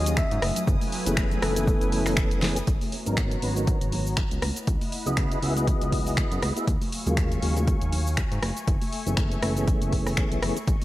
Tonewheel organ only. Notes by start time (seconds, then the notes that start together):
1.06 E3 A3 B3 C#4 G#4
1.42 E3 A3 B3 C#4 A4
1.56 E3 A3 B3 C#4 A4
2.42 E3 A3 B3 C#4 G#4
3.06 F#3 B3 C#4 D#4 A#4
3.42 F#3 B3 C#4 D#4 B4
3.56 F#3 B3 C#4 D#4 A#4
5.06 B3 E4 F#4 G#4 D#5
5.42 B3 E4 F#4 G#4 E5
5.56 B3 E4 F#4 G#4 D#5
6.56 B3 E4 F#4 G#4 E5
7.06 C#3 F#3 G#3 A#3 F4
7.42 C#3 F#3 G#3 A#3 F#4
7.56 C#3 F#3 G#3 A#3 F4
9.06 E3 A3 B3 C#4 G#4
9.42 E3 A3 B3 C#4 A4
9.56 E3 A3 B3 C#4 G#4
10.42 E3 A3 B3 C#4 G#4